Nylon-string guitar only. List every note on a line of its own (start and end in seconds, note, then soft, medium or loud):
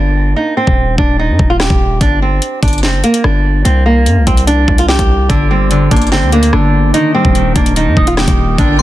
0.00 0.34 D4 medium
0.36 0.54 D#4 medium
0.57 0.96 C4 medium
0.98 1.16 D4 medium
1.19 1.48 D#4 medium
1.50 1.59 F4 medium
1.60 1.98 G4 medium
2.01 2.19 D4 loud
2.22 2.61 C4 medium
2.63 2.81 D4 medium
2.83 3.01 C4 medium
3.04 3.22 A#3 medium
3.24 3.63 D4 medium
3.65 3.83 C4 medium
3.86 4.24 A#3 medium
4.27 4.45 C4 medium
4.47 4.76 D4 medium
4.79 4.88 F4 medium
4.89 5.27 G4 medium
5.29 5.47 D4 loud
5.51 5.89 C4 medium
5.91 6.09 D4 medium
6.12 6.30 C4 medium
6.32 6.50 A#3 medium
6.53 6.92 D4 medium
6.94 7.12 D#4 medium
7.14 7.53 C4 medium
7.56 7.74 D4 medium
7.77 8.06 D#4 medium
8.07 8.16 F4 medium
8.17 8.56 G4 medium
8.59 8.77 D4 loud